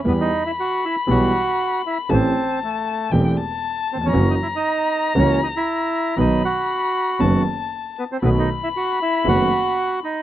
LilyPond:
<<
  \new Staff \with { instrumentName = "Violin" } { \time 4/4 \key e \minor \tempo 4 = 117 b''1 | a''2 g''8 a''4. | ais''1 | b''2 a''4. r8 |
b''1 | }
  \new Staff \with { instrumentName = "Bandoneon" } { \time 4/4 \key e \minor b16 dis'8 e'16 fis'8 e'8 fis'4. e'8 | c'4 a4 r4. c'16 cis'16~ | cis'16 dis'16 e'16 dis'4~ dis'16 cis'8 dis'16 e'4~ e'16 | dis'8 fis'2 r4 b16 c'16 |
b16 dis'8 e'16 fis'8 e'8 fis'4. dis'8 | }
  \new Staff \with { instrumentName = "Grand piano" } { \clef bass \time 4/4 \key e \minor <e, e g b g'>8 r4. <b,, b, e g b g'>8 r4. | <a,, a, e a c' g'>8 r4. <e,, e, e a c' g'>8 r4 r32 dis,32 e,32 f,32 | <fis, e fis ais cis' fis'>8 r4. <cis, cis e ais cis' fis'>8 r4. | <b,, b, dis fis b fis'>8 r4. <fis,, fis, dis fis b fis'>8 r4. |
<b,, b, dis a b fis'>8 r4. <fis,, fis, dis a b fis'>8 r4. | }
  \new Staff \with { instrumentName = "Double bass" } { \clef bass \time 4/4 \key e \minor e,8 r4. b,,8 r4. | a,,8 r4. e,,8 r4. | fis,,8 r4. cis,8 r4. | b,,8 r4. fis,,8 r4. |
b,,8 r4. fis,,8 r4. | }
>>